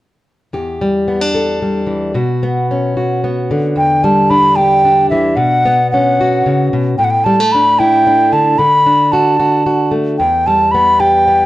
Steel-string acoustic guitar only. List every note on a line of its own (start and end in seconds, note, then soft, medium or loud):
0.53 2.15 E2 medium
0.53 1.34 G4 soft
0.81 1.61 G3 soft
1.08 1.21 B3 soft
1.21 2.15 D4 soft
1.35 2.12 A4 soft
1.62 2.16 G3 soft
1.87 2.11 E3 soft
2.15 3.49 B2 medium
2.15 2.96 F#4 medium
2.43 3.23 B3 soft
2.71 3.74 C#4 soft
2.97 3.73 F#4 soft
3.24 3.74 B3 soft
3.51 5.11 D3 soft
3.75 5.36 E2 medium
4.04 5.37 G3 medium
4.30 4.84 D4 soft
4.58 5.34 G4 medium
4.85 5.93 D4 medium
5.11 5.34 E3 medium
5.37 6.44 B2 medium
5.66 6.95 B3 medium
5.94 6.96 C#4 medium
6.21 6.96 F#4 medium
6.46 6.72 C#3 medium
6.73 6.99 B2 medium
6.99 8.32 A2 medium
7.26 7.40 G3 medium
7.40 8.59 A3 soft
7.55 8.05 D4 medium
7.80 8.59 E4 medium
8.07 8.56 D4 medium
8.32 8.58 D3 medium
8.59 10.19 D3 medium
8.86 10.16 D4 medium
9.13 9.38 F#4 medium
9.39 9.65 F#4 medium
9.66 10.16 F#4 medium
9.91 10.15 A3 soft
10.20 11.46 E2 medium
10.47 11.46 G3 soft
10.74 11.26 B3 soft
11.00 11.46 G4 medium
11.28 11.46 B3 soft